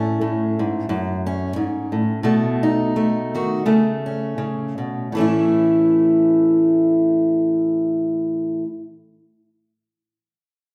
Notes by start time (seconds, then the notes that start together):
Already playing: A2 A3 C#4
0.21 A2
0.59 G#2
0.89 F#2
1.26 C#4
1.56 G#2
1.92 A2
2.23 B2 A3
2.63 D#4
2.96 A3
3.35 D#3 F#4
3.66 C#3 A3
4.06 C#4
4.38 C#3
4.78 B2
5.12 A2 E3
5.17 A3 C#4 E4